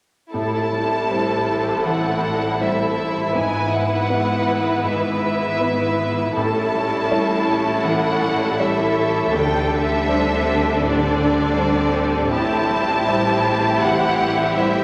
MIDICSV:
0, 0, Header, 1, 8, 480
1, 0, Start_track
1, 0, Tempo, 752823
1, 216, Time_signature, 4, 2, 24, 8
1, 4055, Tempo, 739827
1, 7415, Tempo, 756620
1, 9509, End_track
2, 0, Start_track
2, 0, Title_t, "Violin section"
2, 0, Program_c, 0, 48
2, 214, Note_on_c, 0, 81, 55
2, 1156, Note_off_c, 0, 81, 0
2, 1181, Note_on_c, 0, 78, 59
2, 1658, Note_off_c, 0, 78, 0
2, 1663, Note_on_c, 0, 76, 51
2, 2139, Note_off_c, 0, 76, 0
2, 2142, Note_on_c, 0, 80, 57
2, 2372, Note_off_c, 0, 80, 0
2, 2379, Note_on_c, 0, 78, 57
2, 3085, Note_on_c, 0, 76, 63
2, 3092, Note_off_c, 0, 78, 0
2, 4055, Note_off_c, 0, 76, 0
2, 4058, Note_on_c, 0, 81, 65
2, 4997, Note_off_c, 0, 81, 0
2, 5005, Note_on_c, 0, 78, 74
2, 5493, Note_off_c, 0, 78, 0
2, 5496, Note_on_c, 0, 76, 61
2, 5979, Note_on_c, 0, 79, 69
2, 5983, Note_off_c, 0, 76, 0
2, 6221, Note_off_c, 0, 79, 0
2, 6221, Note_on_c, 0, 76, 72
2, 6938, Note_off_c, 0, 76, 0
2, 6938, Note_on_c, 0, 74, 67
2, 7904, Note_on_c, 0, 81, 81
2, 7911, Note_off_c, 0, 74, 0
2, 8843, Note_off_c, 0, 81, 0
2, 8856, Note_on_c, 0, 78, 78
2, 9330, Note_on_c, 0, 76, 69
2, 9331, Note_off_c, 0, 78, 0
2, 9509, Note_off_c, 0, 76, 0
2, 9509, End_track
3, 0, Start_track
3, 0, Title_t, "Violin section"
3, 0, Program_c, 1, 48
3, 219, Note_on_c, 1, 69, 36
3, 221, Note_on_c, 1, 64, 34
3, 2113, Note_off_c, 1, 69, 0
3, 2134, Note_on_c, 1, 71, 39
3, 4030, Note_off_c, 1, 71, 0
3, 4034, Note_off_c, 1, 64, 0
3, 4052, Note_on_c, 1, 64, 42
3, 4053, Note_on_c, 1, 69, 43
3, 5956, Note_off_c, 1, 64, 0
3, 5988, Note_on_c, 1, 62, 48
3, 7884, Note_off_c, 1, 69, 0
3, 7888, Note_off_c, 1, 62, 0
3, 7914, Note_on_c, 1, 64, 50
3, 7914, Note_on_c, 1, 67, 53
3, 9509, Note_off_c, 1, 64, 0
3, 9509, Note_off_c, 1, 67, 0
3, 9509, End_track
4, 0, Start_track
4, 0, Title_t, "Harp"
4, 0, Program_c, 2, 46
4, 214, Note_on_c, 2, 45, 34
4, 457, Note_on_c, 2, 55, 28
4, 699, Note_on_c, 2, 64, 32
4, 942, Note_on_c, 2, 72, 31
4, 1179, Note_on_c, 2, 52, 33
4, 1409, Note_off_c, 2, 55, 0
4, 1417, Note_on_c, 2, 55, 31
4, 1652, Note_off_c, 2, 64, 0
4, 1659, Note_on_c, 2, 64, 32
4, 1886, Note_off_c, 2, 72, 0
4, 1894, Note_on_c, 2, 72, 35
4, 2134, Note_on_c, 2, 44, 37
4, 2154, Note_off_c, 2, 52, 0
4, 2154, Note_off_c, 2, 55, 0
4, 2154, Note_off_c, 2, 72, 0
4, 2155, Note_off_c, 2, 45, 0
4, 2369, Note_on_c, 2, 59, 29
4, 2600, Note_off_c, 2, 64, 0
4, 2608, Note_on_c, 2, 64, 37
4, 2844, Note_on_c, 2, 71, 35
4, 3076, Note_off_c, 2, 44, 0
4, 3083, Note_on_c, 2, 44, 38
4, 3315, Note_off_c, 2, 59, 0
4, 3323, Note_on_c, 2, 59, 33
4, 3550, Note_off_c, 2, 64, 0
4, 3558, Note_on_c, 2, 64, 34
4, 3797, Note_off_c, 2, 71, 0
4, 3805, Note_on_c, 2, 71, 39
4, 4053, Note_on_c, 2, 45, 45
4, 4074, Note_off_c, 2, 44, 0
4, 4074, Note_off_c, 2, 59, 0
4, 4074, Note_off_c, 2, 71, 0
4, 4300, Note_on_c, 2, 55, 34
4, 4531, Note_off_c, 2, 64, 0
4, 4538, Note_on_c, 2, 64, 40
4, 4777, Note_on_c, 2, 73, 38
4, 5015, Note_on_c, 2, 52, 39
4, 5249, Note_off_c, 2, 55, 0
4, 5257, Note_on_c, 2, 55, 40
4, 5489, Note_off_c, 2, 64, 0
4, 5497, Note_on_c, 2, 64, 40
4, 5728, Note_off_c, 2, 73, 0
4, 5735, Note_on_c, 2, 73, 43
4, 5983, Note_on_c, 2, 50, 49
4, 6000, Note_off_c, 2, 73, 0
4, 6002, Note_off_c, 2, 45, 0
4, 6003, Note_off_c, 2, 52, 0
4, 6003, Note_off_c, 2, 64, 0
4, 6225, Note_on_c, 2, 62, 37
4, 6462, Note_on_c, 2, 72, 43
4, 6699, Note_on_c, 2, 67, 43
4, 6929, Note_off_c, 2, 55, 0
4, 6937, Note_on_c, 2, 55, 41
4, 7167, Note_off_c, 2, 62, 0
4, 7175, Note_on_c, 2, 62, 42
4, 7410, Note_off_c, 2, 72, 0
4, 7418, Note_on_c, 2, 72, 44
4, 7652, Note_off_c, 2, 67, 0
4, 7660, Note_on_c, 2, 67, 47
4, 7908, Note_on_c, 2, 45, 52
4, 7930, Note_off_c, 2, 62, 0
4, 7931, Note_off_c, 2, 50, 0
4, 8142, Note_off_c, 2, 55, 0
4, 8150, Note_on_c, 2, 55, 42
4, 8386, Note_on_c, 2, 64, 45
4, 8621, Note_off_c, 2, 72, 0
4, 8629, Note_on_c, 2, 72, 42
4, 8863, Note_on_c, 2, 52, 44
4, 9091, Note_off_c, 2, 55, 0
4, 9099, Note_on_c, 2, 55, 40
4, 9322, Note_off_c, 2, 64, 0
4, 9330, Note_on_c, 2, 64, 44
4, 9509, Note_off_c, 2, 45, 0
4, 9509, Note_off_c, 2, 52, 0
4, 9509, Note_off_c, 2, 55, 0
4, 9509, Note_off_c, 2, 64, 0
4, 9509, Note_off_c, 2, 67, 0
4, 9509, Note_off_c, 2, 72, 0
4, 9509, End_track
5, 0, Start_track
5, 0, Title_t, "Grand piano"
5, 0, Program_c, 3, 0
5, 216, Note_on_c, 3, 45, 35
5, 332, Control_c, 3, 64, 127
5, 688, Note_off_c, 3, 45, 0
5, 703, Note_on_c, 3, 55, 27
5, 706, Note_on_c, 3, 64, 26
5, 708, Note_on_c, 3, 72, 27
5, 1157, Note_off_c, 3, 55, 0
5, 1159, Note_off_c, 3, 64, 0
5, 1160, Note_off_c, 3, 72, 0
5, 1182, Note_on_c, 3, 52, 32
5, 1658, Note_on_c, 3, 55, 29
5, 1659, Note_on_c, 3, 64, 26
5, 1664, Note_on_c, 3, 72, 31
5, 1946, Note_off_c, 3, 52, 0
5, 2110, Note_off_c, 3, 55, 0
5, 2111, Note_off_c, 3, 64, 0
5, 2114, Note_off_c, 3, 72, 0
5, 2136, Note_on_c, 3, 44, 37
5, 2148, Control_c, 3, 64, 0
5, 2246, Control_c, 3, 64, 127
5, 2597, Note_off_c, 3, 44, 0
5, 2609, Note_on_c, 3, 59, 28
5, 2612, Note_on_c, 3, 64, 28
5, 2615, Note_on_c, 3, 71, 32
5, 3063, Note_off_c, 3, 59, 0
5, 3064, Note_off_c, 3, 64, 0
5, 3066, Note_off_c, 3, 71, 0
5, 3091, Note_on_c, 3, 56, 32
5, 3568, Note_on_c, 3, 59, 33
5, 3571, Note_on_c, 3, 64, 31
5, 3575, Note_on_c, 3, 71, 32
5, 3862, Note_off_c, 3, 56, 0
5, 4033, Note_off_c, 3, 59, 0
5, 4034, Note_off_c, 3, 64, 0
5, 4036, Note_off_c, 3, 71, 0
5, 4061, Note_on_c, 3, 45, 41
5, 4068, Control_c, 3, 64, 0
5, 4180, Control_c, 3, 64, 127
5, 4527, Note_off_c, 3, 45, 0
5, 4539, Note_on_c, 3, 55, 34
5, 4541, Note_on_c, 3, 64, 31
5, 4544, Note_on_c, 3, 73, 36
5, 4989, Note_off_c, 3, 55, 0
5, 4991, Note_off_c, 3, 64, 0
5, 4992, Note_off_c, 3, 73, 0
5, 5019, Note_on_c, 3, 52, 36
5, 5501, Note_on_c, 3, 55, 34
5, 5504, Note_on_c, 3, 64, 36
5, 5507, Note_on_c, 3, 73, 36
5, 5793, Note_off_c, 3, 52, 0
5, 5960, Note_off_c, 3, 55, 0
5, 5961, Note_off_c, 3, 64, 0
5, 5962, Note_off_c, 3, 73, 0
5, 5990, Note_on_c, 3, 38, 48
5, 5995, Control_c, 3, 64, 0
5, 6096, Control_c, 3, 64, 127
5, 6451, Note_off_c, 3, 38, 0
5, 6466, Note_on_c, 3, 55, 37
5, 6469, Note_on_c, 3, 62, 37
5, 6470, Note_on_c, 3, 72, 38
5, 6915, Note_off_c, 3, 55, 0
5, 6917, Note_off_c, 3, 62, 0
5, 6917, Note_off_c, 3, 72, 0
5, 6941, Note_on_c, 3, 45, 40
5, 7414, Note_on_c, 3, 55, 37
5, 7417, Note_on_c, 3, 62, 35
5, 7421, Note_on_c, 3, 72, 42
5, 7714, Note_off_c, 3, 45, 0
5, 7884, Note_off_c, 3, 55, 0
5, 7886, Note_off_c, 3, 62, 0
5, 7888, Note_off_c, 3, 72, 0
5, 7907, Note_on_c, 3, 45, 48
5, 7923, Control_c, 3, 64, 0
5, 8018, Control_c, 3, 64, 127
5, 8375, Note_off_c, 3, 45, 0
5, 8386, Note_on_c, 3, 55, 37
5, 8391, Note_on_c, 3, 64, 38
5, 8392, Note_on_c, 3, 72, 43
5, 8838, Note_off_c, 3, 55, 0
5, 8840, Note_off_c, 3, 64, 0
5, 8841, Note_off_c, 3, 72, 0
5, 8860, Note_on_c, 3, 52, 41
5, 9332, Note_on_c, 3, 55, 36
5, 9334, Note_on_c, 3, 64, 38
5, 9340, Note_on_c, 3, 72, 42
5, 9509, Note_off_c, 3, 52, 0
5, 9509, Note_off_c, 3, 55, 0
5, 9509, Note_off_c, 3, 64, 0
5, 9509, Note_off_c, 3, 72, 0
5, 9509, End_track
6, 0, Start_track
6, 0, Title_t, "Viola section"
6, 0, Program_c, 4, 48
6, 214, Note_on_c, 4, 55, 40
6, 216, Note_on_c, 4, 60, 44
6, 2110, Note_off_c, 4, 55, 0
6, 2111, Note_off_c, 4, 60, 0
6, 2134, Note_on_c, 4, 52, 43
6, 2135, Note_on_c, 4, 59, 42
6, 4030, Note_off_c, 4, 52, 0
6, 4031, Note_off_c, 4, 59, 0
6, 4055, Note_on_c, 4, 55, 47
6, 4055, Note_on_c, 4, 61, 48
6, 5957, Note_off_c, 4, 61, 0
6, 5988, Note_on_c, 4, 60, 55
6, 7886, Note_off_c, 4, 55, 0
6, 7910, Note_on_c, 4, 52, 59
6, 9509, Note_off_c, 4, 52, 0
6, 9509, Note_off_c, 4, 60, 0
6, 9509, End_track
7, 0, Start_track
7, 0, Title_t, "Cello section"
7, 0, Program_c, 5, 48
7, 217, Note_on_c, 5, 45, 42
7, 2112, Note_off_c, 5, 45, 0
7, 2133, Note_on_c, 5, 44, 44
7, 4030, Note_off_c, 5, 44, 0
7, 4053, Note_on_c, 5, 45, 49
7, 5982, Note_off_c, 5, 45, 0
7, 5983, Note_on_c, 5, 50, 54
7, 7886, Note_off_c, 5, 50, 0
7, 7914, Note_on_c, 5, 45, 57
7, 9509, Note_off_c, 5, 45, 0
7, 9509, End_track
8, 0, Start_track
8, 0, Title_t, "Double bass section"
8, 0, Program_c, 6, 48
8, 215, Note_on_c, 6, 33, 38
8, 2111, Note_off_c, 6, 33, 0
8, 2134, Note_on_c, 6, 32, 41
8, 4030, Note_off_c, 6, 32, 0
8, 4057, Note_on_c, 6, 33, 47
8, 5982, Note_on_c, 6, 38, 53
8, 5984, Note_off_c, 6, 33, 0
8, 7885, Note_off_c, 6, 38, 0
8, 7913, Note_on_c, 6, 33, 56
8, 9509, Note_off_c, 6, 33, 0
8, 9509, End_track
0, 0, End_of_file